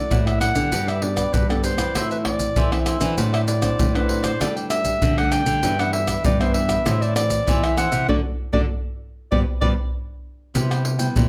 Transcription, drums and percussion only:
0.11 pandeiro, maracas, surdo
0.27 pandeiro, tamborim, maracas
0.41 pandeiro, tamborim, maracas
0.55 pandeiro, maracas, surdo
0.72 pandeiro, maracas, surdo
0.88 pandeiro, tamborim, maracas
1.02 pandeiro
1.17 pandeiro, tamborim, maracas, surdo
1.34 pandeiro, maracas, surdo
1.50 pandeiro, tamborim, maracas
1.64 pandeiro, maracas
1.78 pandeiro, tamborim, maracas, surdo
1.95 pandeiro, tamborim, maracas, surdo
2.11 pandeiro, maracas
2.25 pandeiro, tamborim, surdo
2.39 pandeiro, maracas, surdo
2.56 pandeiro, maracas, surdo
2.72 pandeiro, tamborim, maracas
2.86 pandeiro, tamborim, maracas
3.01 pandeiro, maracas, surdo
3.18 pandeiro, maracas, surdo
3.34 pandeiro, tamborim, maracas
3.48 pandeiro, maracas
3.62 pandeiro, tamborim, maracas, surdo
3.79 pandeiro, maracas, surdo
3.95 pandeiro, tamborim, maracas
4.09 pandeiro
4.24 pandeiro, tamborim, maracas, surdo
4.41 pandeiro, tamborim, maracas, surdo
4.57 pandeiro, maracas
4.70 pandeiro, tamborim, maracas
4.85 pandeiro, maracas, surdo
5.02 pandeiro, maracas, surdo
5.18 pandeiro, tamborim, maracas
5.32 pandeiro, tamborim, maracas
5.46 pandeiro, maracas, surdo
5.63 pandeiro, maracas, surdo
5.79 pandeiro, tamborim, maracas
5.93 pandeiro
6.07 pandeiro, tamborim, maracas, surdo
6.25 pandeiro, maracas, surdo
6.41 pandeiro, tamborim, maracas
6.54 pandeiro
6.69 pandeiro, tamborim, maracas, surdo
6.86 pandeiro, tamborim, maracas, surdo
7.02 pandeiro, maracas
7.16 pandeiro, tamborim, maracas
7.30 pandeiro, maracas, surdo
7.48 pandeiro, maracas, surdo
7.64 pandeiro, tamborim, maracas
7.77 pandeiro, tamborim, maracas
7.92 pandeiro, maracas, surdo
8.09 surdo
8.54 surdo
9.32 surdo
9.62 surdo
10.55 pandeiro, maracas, surdo
10.71 pandeiro, tamborim, maracas
10.85 pandeiro
10.99 pandeiro, maracas
11.16 pandeiro, maracas, surdo

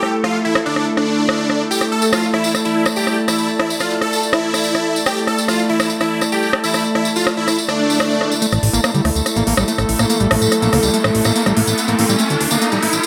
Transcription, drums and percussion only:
0.03 cross-stick
0.24 cross-stick
0.55 cross-stick
0.76 cross-stick
0.97 cross-stick
1.29 cross-stick
1.50 cross-stick
1.72 tambourine
1.81 cross-stick, tambourine
2.02 tambourine
2.13 cross-stick, tambourine
2.23 tambourine
2.34 cross-stick
2.44 tambourine
2.55 cross-stick, tambourine
2.65 tambourine
2.86 cross-stick, tambourine
2.96 tambourine
3.07 cross-stick, tambourine
3.28 cross-stick, tambourine
3.38 tambourine
3.48 tambourine
3.59 cross-stick
3.70 tambourine
3.80 cross-stick, tambourine
3.90 tambourine
4.01 cross-stick
4.13 tambourine
4.23 tambourine
4.33 cross-stick, tambourine
4.54 cross-stick, tambourine
4.64 tambourine
4.75 cross-stick, tambourine
4.96 tambourine
5.06 cross-stick, tambourine
5.17 tambourine
5.27 cross-stick
5.38 tambourine
5.48 cross-stick, tambourine
5.59 tambourine
5.80 cross-stick, tambourine
5.90 tambourine
6.00 cross-stick, tambourine
6.21 cross-stick, tambourine
6.32 tambourine
6.43 tambourine
6.53 cross-stick
6.64 tambourine
6.74 cross-stick, tambourine
6.85 tambourine
6.95 cross-stick
7.05 tambourine
7.16 tambourine
7.27 cross-stick, tambourine
7.48 cross-stick, tambourine
7.58 tambourine
7.69 cross-stick, tambourine
7.90 tambourine
8.00 cross-stick, tambourine
8.11 tambourine
8.21 cross-stick
8.32 tambourine
8.42 closed hi-hat, tambourine
8.52 cross-stick, closed hi-hat, tambourine
8.63 open hi-hat
8.73 closed hi-hat, tambourine
8.84 cross-stick, closed hi-hat, tambourine
8.94 closed hi-hat, tambourine
9.05 cross-stick, open hi-hat
9.15 closed hi-hat, tambourine
9.26 cross-stick, closed hi-hat, tambourine
9.36 closed hi-hat, tambourine
9.47 open hi-hat
9.57 cross-stick, closed hi-hat, tambourine
9.68 closed hi-hat, tambourine
9.78 cross-stick, closed hi-hat, tambourine
9.89 open hi-hat
9.99 cross-stick, closed hi-hat, tambourine
10.10 closed hi-hat, tambourine
10.20 closed hi-hat, tambourine
10.31 cross-stick, open hi-hat
10.41 closed hi-hat, tambourine
10.52 cross-stick, closed hi-hat, tambourine
10.62 closed hi-hat, tambourine
10.73 cross-stick, open hi-hat
10.83 closed hi-hat, tambourine
10.94 closed hi-hat, tambourine
11.04 cross-stick, closed hi-hat, tambourine
11.15 open hi-hat
11.25 cross-stick, closed hi-hat, tambourine
11.35 closed hi-hat, tambourine
11.46 cross-stick, closed hi-hat, tambourine
11.57 open hi-hat
11.67 closed hi-hat, tambourine
11.78 closed hi-hat, tambourine
11.88 closed hi-hat, tambourine
11.99 open hi-hat
12.09 closed hi-hat, tambourine
12.19 closed hi-hat, tambourine
12.30 closed hi-hat, tambourine
12.41 open hi-hat
12.51 closed hi-hat, tambourine
12.62 closed hi-hat, tambourine
12.72 closed hi-hat, tambourine
12.83 open hi-hat
12.93 closed hi-hat, tambourine
13.03 tambourine

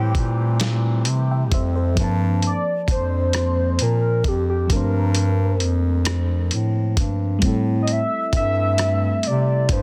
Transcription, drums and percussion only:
0.15 kick, closed hi-hat
0.60 snare, closed hi-hat
1.05 closed hi-hat
1.52 kick, closed hi-hat
1.97 kick, closed hi-hat
2.42 closed hi-hat
2.88 kick, closed hi-hat
3.33 cross-stick, closed hi-hat
3.79 closed hi-hat
4.24 kick, closed hi-hat
4.70 kick, closed hi-hat
5.15 closed hi-hat
5.60 closed hi-hat
6.05 cross-stick, closed hi-hat
6.51 closed hi-hat
6.97 kick, closed hi-hat
7.42 kick, closed hi-hat
7.87 closed hi-hat
8.33 kick, closed hi-hat
8.78 cross-stick, closed hi-hat
9.23 closed hi-hat
9.69 kick, closed hi-hat

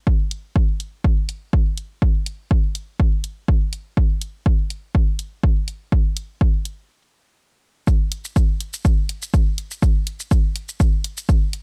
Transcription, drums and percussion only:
0.07 kick
0.31 closed hi-hat
0.56 kick
0.80 closed hi-hat
1.04 kick
1.29 closed hi-hat
1.53 kick
1.78 closed hi-hat
2.02 kick
2.26 closed hi-hat
2.51 kick
2.75 closed hi-hat
3.00 kick
3.24 closed hi-hat
3.48 kick
3.73 closed hi-hat
3.97 kick
4.21 closed hi-hat
4.46 kick
4.70 closed hi-hat
4.95 kick
5.19 closed hi-hat
5.43 kick
5.68 closed hi-hat
5.92 kick
6.17 closed hi-hat
6.41 kick
6.65 closed hi-hat
7.87 kick, shaker
8.12 closed hi-hat
8.25 shaker
8.36 kick, shaker
8.60 closed hi-hat
8.73 shaker
8.85 kick, shaker
9.09 closed hi-hat
9.22 shaker
9.34 kick, shaker
9.58 closed hi-hat
9.71 shaker
9.82 kick, shaker
10.07 closed hi-hat
10.20 shaker
10.31 kick, shaker
10.56 closed hi-hat
10.69 shaker
10.80 kick, shaker
11.04 closed hi-hat
11.17 shaker
11.29 kick, shaker
11.53 closed hi-hat

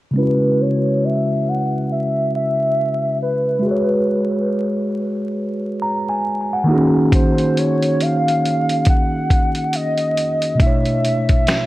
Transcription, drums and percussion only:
7.12 kick, closed hi-hat
7.38 closed hi-hat
7.57 closed hi-hat
7.82 closed hi-hat
8.00 closed hi-hat
8.28 closed hi-hat
8.45 closed hi-hat
8.69 closed hi-hat
8.85 kick, closed hi-hat
9.30 kick, closed hi-hat
9.55 closed hi-hat
9.73 closed hi-hat
9.97 closed hi-hat
10.17 closed hi-hat
10.42 closed hi-hat
10.60 kick, closed hi-hat
10.85 closed hi-hat
11.05 closed hi-hat
11.29 kick, closed hi-hat
11.47 finger snap, snare, closed hi-hat

